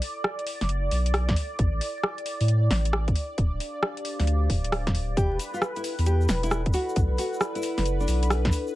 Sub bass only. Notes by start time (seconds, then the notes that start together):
0.62 F#1
0.92 B1
1.59 A1
1.74 A1
2.41 A2
2.71 A1
3.38 D1
3.53 D1
4.20 D2
4.50 D1
5.17 E1
5.31 E1
5.99 E2
6.29 E1
6.96 B1
7.11 B1
7.78 F#1
8.08 B1